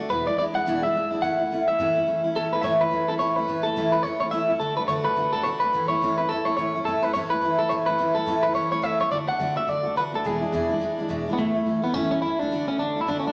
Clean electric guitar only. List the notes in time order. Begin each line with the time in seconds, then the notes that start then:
0.10 B4
0.27 D5
0.39 D5
0.55 F#5
0.83 E5
1.22 F#5
1.68 E5
2.36 A4
2.53 B4
2.61 C#5 E5
2.81 B4
3.08 A4
3.19 C#5
3.36 B4
3.63 A4
3.92 B4
4.03 C#5
4.20 C#5
4.31 E5
4.60 A4
4.77 B4
4.88 C#5
5.05 B4
5.33 A4
5.43 C#5
5.60 B4
5.88 C#5
6.18 B4
6.29 A4
6.45 C#5
6.57 C#5
6.85 A4
7.03 B4
7.14 C#5
7.30 B4
7.59 A4
7.69 C#5
7.86 B4
8.15 A4
8.43 B4
8.55 C#5
8.72 C#5
8.83 E5
9.01 C#5
9.12 D5
9.28 F#5
9.57 E5
9.69 D5
9.97 B4
10.15 A4
10.26 G#4
11.33 B3
11.39 A3
11.84 B3
11.94 C#4
12.11 C#4
12.22 E4
12.39 D4
12.68 C#4
12.79 D4
13.01 E4
13.08 D4
13.20 C#4
13.27 D4